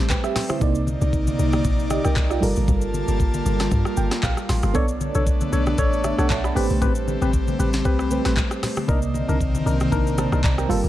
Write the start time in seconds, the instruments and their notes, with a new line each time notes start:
Already playing: analog synth pad G3 A3 C4, fm electric piano A3 G4 B4 C5
0.10 fm electric piano B4 G5, kick, clap, low conga, shaker
0.24 fm electric piano G4 E5, cross-stick, shaker
0.36 cross-stick, snare, open hi-hat, low conga, shaker
0.49 fm electric piano E4 C5, cross-stick, high conga, shaker
0.59 log drum bass C2, fm electric piano C3 A#3 D#4 D5, analog synth pad C3 A#3 D#4 D5, kick, low conga, shaker
0.75 shaker
0.87 high conga, shaker
1.01 log drum bass C2, high conga, shaker
1.13 kick, shaker
1.27 high conga, shaker
1.39 log drum bass C2, high conga, shaker
1.53 cross-stick, high conga, shaker
1.65 log drum bass A#1, kick, shaker
1.79 shaker
1.90 fm electric piano G4 D#5, cross-stick, high conga, shaker
2.04 log drum bass C2, fm electric piano A#4 G5, cross-stick, shaker
2.16 log drum bass C2, kick, clap, low conga, shaker
2.30 fm electric piano F4 D5, cross-stick, shaker
2.40 log drum bass G1, fm electric piano G3 F4 A4 A#4, analog synth pad G3 A#3 F4 A5, open hi-hat, low conga, shaker
2.56 log drum bass A1, high conga, shaker
2.68 log drum bass G1, kick, low conga, shaker
2.81 shaker
2.94 high conga, shaker
3.08 log drum bass G1, high conga, shaker
3.20 kick, shaker
3.34 high conga, shaker
3.46 log drum bass G1, high conga, shaker
3.59 cross-stick, snare, high conga, shaker
3.71 log drum bass G2, kick, shaker
3.85 cross-stick, shaker
3.97 log drum bass G1, fm electric piano G5, high conga, shaker
4.11 cross-stick, snare, shaker
4.23 log drum bass A#1, fm electric piano F5, kick, clap, low conga, shaker
4.37 cross-stick, shaker
4.49 log drum bass A1, fm electric piano C6, cross-stick, snare, open hi-hat, low conga, shaker
4.63 log drum bass G1, cross-stick, high conga, shaker
4.73 log drum bass B1, analog synth pad A3 B3 D4, fm electric piano B3 A4 C#5 D5, synth stab D4 A4 C#5, kick, low conga, shaker
4.88 shaker
5.01 high conga, shaker
5.15 log drum bass B1, synth stab D4 A4 C#5, high conga, shaker
5.27 kick, shaker
5.41 high conga, shaker
5.52 log drum bass B1, synth stab D4 A4 C#5, high conga, shaker
5.66 cross-stick, high conga, shaker
5.78 log drum bass A1, synth stab D4 A4 C#5, kick, shaker
5.93 shaker
6.04 fm electric piano E5, cross-stick, high conga, shaker
6.18 log drum bass B1, synth stab D4 A4 C#5, fm electric piano A4 F#5, cross-stick, shaker
6.30 log drum bass B1, fm electric piano C#5 A5, kick, clap, low conga, shaker
6.44 fm electric piano D5 B5, cross-stick, shaker
6.55 log drum bass A1, analog synth pad G3 C4, fm electric piano A3 G4 B4 C5, synth stab C4 G4 B4, open hi-hat, low conga, shaker
6.70 log drum bass B1, high conga, shaker
6.81 log drum bass A1, synth stab C4 G4 B4, kick, low conga, shaker
6.95 shaker
7.08 high conga, shaker
7.22 log drum bass A1, synth stab C4 G4 B4, high conga, shaker
7.33 kick, shaker
7.48 high conga, shaker
7.59 log drum bass A1, synth stab C4 G4 B4, high conga, shaker
7.73 snare, high conga, shaker
7.85 log drum bass C2, synth stab C4 G4 B4, kick, shaker
7.99 cross-stick, shaker
8.10 fm electric piano A3 G4 B4 C5, high conga, shaker
8.25 log drum bass A1, synth stab C4 G4 B4, cross-stick, snare, shaker
8.37 kick, clap, low conga, shaker
8.51 cross-stick, shaker
8.63 cross-stick, snare, open hi-hat, low conga, shaker
8.77 cross-stick, high conga, shaker
8.87 log drum bass C2, fm electric piano C3 A#3 D5 D#5, analog synth pad C3 D#3 A#3 C4, synth stab D4 D#4 A#4, kick, low conga, shaker
9.02 shaker
9.14 high conga, shaker
9.28 log drum bass C2, synth stab D4 D#4 A#4, high conga, shaker
9.41 kick, shaker
9.55 high conga, shaker
9.66 log drum bass C2, synth stab D4 D#4 A#4, high conga, shaker
9.80 cross-stick, high conga, shaker
9.92 log drum bass A#1, synth stab D4 D#4 A#4, kick, shaker
10.07 shaker
10.18 fm electric piano C5 A5, cross-stick, high conga, shaker
10.32 log drum bass C2, synth stab D4 D#4 A#4, cross-stick, shaker
10.44 log drum bass C2, fm electric piano D5 A#5, kick, clap, low conga, shaker
10.58 fm electric piano A#4 G5, cross-stick, shaker
10.68 log drum bass G1, fm electric piano G3 F4 A4 A#4, analog synth pad G3 A#3 F4 A5, synth stab A#3 F4 A4, open hi-hat, low conga, shaker
10.84 log drum bass A1, high conga, shaker